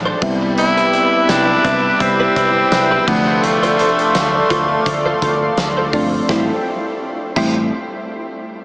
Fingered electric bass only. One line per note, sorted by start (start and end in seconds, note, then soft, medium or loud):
0.00 0.12 A1 loud
0.22 0.99 C2 loud
1.29 1.55 C2 loud
1.65 1.90 C2 medium
2.00 2.26 C2 loud
2.36 2.62 C2 medium
2.72 2.98 C2 loud
3.08 3.85 D2 medium
4.15 4.41 D2 loud
4.50 4.76 D2 medium
4.86 5.12 D2 loud
5.22 5.48 D2 medium
5.58 5.95 D2 medium
5.93 6.19 G1 medium
6.29 6.50 A1 loud
7.36 7.70 A1 medium